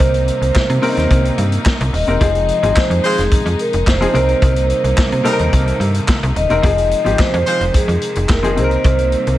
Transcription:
Already playing: grand piano C3 C4 D#4 A#4, string section C3 D#3 G3 A#3 D#4, vibraphone C5
0.00 fm bass C2, kick, closed hi-hat
0.14 closed hi-hat
0.28 closed hi-hat
0.41 fm bass C2, closed hi-hat
0.55 fm bass C3, kick, snare, clap
0.70 fm bass C3, closed hi-hat
0.82 grand piano C3 C4 C#4 A#4, open hi-hat
0.89 grand piano D#4
0.97 fm bass D#2, snare, closed hi-hat
1.10 fm bass C2, kick, closed hi-hat
1.25 closed hi-hat
1.38 fm bass G2, closed hi-hat
1.52 closed hi-hat
1.66 kick, snare, clap
1.81 fm bass C2, closed hi-hat
1.93 fm bass D#1, vibraphone D#5, open hi-hat
2.07 fm bass E1, grand piano C3 C4 D#4 A#4, closed hi-hat
2.21 fm bass F1, string section C3 D#3 F3 G#3, grand piano F3 C4 D#4 G#4, vibraphone D#5, kick, closed hi-hat
2.35 closed hi-hat
2.48 closed hi-hat
2.63 fm bass G#1, grand piano F3 C4 D#4 G#4, closed hi-hat
2.76 vibraphone C5, kick, snare, clap
2.90 fm bass F2, closed hi-hat
3.04 horn section G#3 F4 C5, vibraphone G#4, closed hi-hat
3.18 fm bass F1, snare, closed hi-hat
3.31 fm bass F2, kick, closed hi-hat
3.46 fm bass F2, closed hi-hat
3.59 vibraphone A#4, closed hi-hat
3.73 fm bass F1, closed hi-hat
3.87 fm bass F1, vibraphone C5, kick, snare, clap
4.01 grand piano F3 C4 D#4 G#4, closed hi-hat
4.13 fm bass C2, grand piano C3 C4 D#4 A#4, string section C3 D#3 G3 A#3, vibraphone C5, closed hi-hat
4.29 closed hi-hat
4.42 fm bass C2, kick, closed hi-hat
4.56 closed hi-hat
4.70 closed hi-hat
4.84 fm bass C2, closed hi-hat
4.98 kick, snare, clap
5.12 fm bass C3, closed hi-hat
5.24 grand piano C3 C4 D#4 A4, horn section G3 D#4 A#4, closed hi-hat
5.32 grand piano A#4
5.39 fm bass D#2, closed hi-hat
5.53 fm bass C2, kick, closed hi-hat
5.67 closed hi-hat
5.80 fm bass G2, closed hi-hat
5.94 closed hi-hat
6.08 kick, snare, clap
6.23 fm bass C2, closed hi-hat
6.36 fm bass D#1, vibraphone D#5, closed hi-hat
6.49 fm bass E1, grand piano C3 C4 D#4 A#4, closed hi-hat
6.62 fm bass F1, string section C3 F3 G#3, grand piano F3 C4 D#4 G#4, vibraphone D#5, kick, closed hi-hat
6.78 closed hi-hat
6.91 closed hi-hat
7.05 fm bass G#1, grand piano F3 C4 D#4 G4, closed hi-hat
7.19 fm bass F2, vibraphone C5, kick, snare, clap
7.34 fm bass F2, closed hi-hat
7.46 horn section G#3 F4 C5, closed hi-hat
7.61 fm bass F1, closed hi-hat
7.74 fm bass F2, vibraphone G#4, kick, closed hi-hat
7.88 fm bass F2, closed hi-hat
8.02 closed hi-hat
8.15 fm bass F1, closed hi-hat
8.29 fm bass F1, vibraphone A#4, kick, snare, clap
8.43 grand piano F3 C4 D#4 G#4, closed hi-hat
8.56 fm bass C2, grand piano C3 C4 D#4 G#4, string section C3 G3 A#3, vibraphone C5, closed hi-hat
8.64 grand piano A#4
8.71 closed hi-hat
8.84 fm bass C2, kick, closed hi-hat
8.99 closed hi-hat
9.12 closed hi-hat
9.27 fm bass C2, closed hi-hat

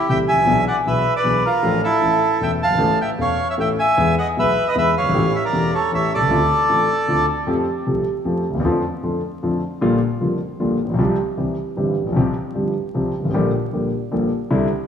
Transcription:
Already playing: bandoneon G4
0.09 grand piano C2 C3 E3 A3 C4 G4, bandoneon E5 G5
0.28 bandoneon E5 G#5
0.33 grand piano G#1
0.38 grand piano A1
0.42 grand piano A#1
0.47 grand piano B1 B2 E3 B3 D4 G#4
0.68 bandoneon D5 F#5
0.85 grand piano B1 B2 E3 B3 D4 G#4, bandoneon B4 E5
1.16 bandoneon B4 D5
1.24 grand piano B1 B2 E3 B3 D4 G#4
1.45 bandoneon F4 A#4
1.63 grand piano A1 A2 F3 A3 D4 A4
1.84 bandoneon E4 A4
2.01 grand piano A1 A2 E3 A3 C#4 A4
2.40 grand piano E1 E2 E3 A3 C#4 A4, bandoneon E5 G5
2.63 grand piano F#1, bandoneon F5 A5
2.70 grand piano G1 G#1
2.78 grand piano A1 A2 E3 A3 C#4 A4
3.01 bandoneon E5 G5
3.18 grand piano E1 E2 E3 A3 C#4 A4, bandoneon C#5 F5
3.50 bandoneon C#5 E5
3.57 grand piano A1 A2 E3 A3 C#4 A4, bandoneon E5 G5
3.79 bandoneon E5 G#5
3.97 grand piano E2 E3 G#3 B3 G#4
4.18 bandoneon D#5 F#5
4.37 grand piano B1 B2 E3 G#3 B3 G#4, bandoneon B4 E5
4.68 bandoneon B4 D#5
4.75 grand piano E2 E3 G#3 B3 G#4, bandoneon B4 E5
4.97 grand piano F#1, bandoneon C#5 F5
5.04 grand piano G1
5.09 grand piano G#1
5.14 grand piano A1 A2 E3 A3 C#4 G4
5.35 bandoneon C#5 E5
5.45 bandoneon A#4 D5
5.53 grand piano E1 E2 E3 A3 C#4 G4
5.74 bandoneon A4 C#5
5.91 grand piano A1 A2 E3 A3 C#4 G4, bandoneon C#5 E5
6.14 grand piano B1, bandoneon A4 D5
6.21 grand piano C2
6.26 grand piano C#2
6.30 grand piano D2 D3 A3 C4 F4
6.69 grand piano A1 A2 D3 A3 C4 F4
7.08 grand piano D2 D3 A3 C4 F4
7.47 grand piano F2 F3 A3 C4 G4
7.86 grand piano C2 C3 F3 A3 C4 G4
8.25 grand piano F2 F3 A3 C4 G4
8.50 grand piano D2
8.55 grand piano D#2
8.60 grand piano E2
8.65 grand piano F2 D3 F3 A3 C4 F4
9.03 grand piano F2 D3 F3 A3 C4 F4
9.43 grand piano F2 D3 F3 A3 C4 F4
9.81 grand piano A#1 A#2 D3 G3 A#3 F4
10.21 grand piano F1 F2 D3 G3 A#3 F4
10.60 grand piano A#1 A#2 D3 G3 A#3 F4
10.84 grand piano A1
10.89 grand piano A#1
10.94 grand piano B1
10.99 grand piano C2 C3 F3 G3 C4 G4
11.37 grand piano C2 C3 E3 G3 C4 G4
11.77 grand piano G1 G2 E3 G3 C4 G4
12.01 grand piano A1
12.07 grand piano A#1
12.12 grand piano B1 C3 F3
12.17 grand piano C2 G3 C4 G4
12.55 grand piano G1 G2 F3 G3 C4 G4
12.94 grand piano C2 C3 F3 G3 C4 G4
13.19 grand piano G1
13.24 grand piano G#1
13.29 grand piano A1
13.34 grand piano A#1 A#2 D3 G3 A#3 G4
13.73 grand piano A#1 A#2 D3 G3 A#3 G4
14.11 grand piano A#1 A#2 D3 G3 A#3 G4
14.50 grand piano C2 C3 D3 G3 C4 E4

